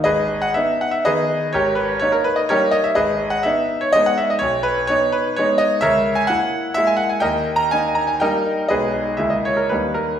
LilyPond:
<<
  \new Staff \with { instrumentName = "Grand piano" } { \time 3/4 \key gis \minor \tempo 4 = 124 <gis' b' dis''>8. fis''16 e''8 fis''16 e''16 <gis' b' dis''>4 | <g' ais' cis''>8 b'8 cis''16 ais'16 b'16 dis''16 <g' ais' cis''>8 dis''16 e''16 | <gis' b' dis''>8. fis''16 e''8. cis''16 dis''16 fis''16 e''16 dis''16 | cis''8 b'8 cis''8 b'8 cis''8 dis''8 |
<ais' cis'' e''>8. gis''16 fis''4 e''16 gis''16 fis''16 gis''16 | <ais' dis'' g''>8. ais''16 gis''8 ais''16 gis''16 <ais' dis'' g''>4 | <gis' b' dis''>4 e''16 dis''16 cis''16 ais'16 b'8 ais'8 | }
  \new Staff \with { instrumentName = "Grand piano" } { \time 3/4 \key gis \minor gis,,4 <b dis'>4 <dis b dis'>4 | gis,,4 <ais dis'>4 <g ais dis'>4 | gis,,4 <b dis'>4 <gis b dis'>4 | b,,4 <b dis'>4 <gis b dis'>4 |
cis,4 <ais e'>4 <gis ais e'>4 | dis,4 <ais dis'>4 <g ais dis'>4 | <b,, gis b dis'>4 <cis, gis ais e'>4 <dis, g ais dis'>4 | }
>>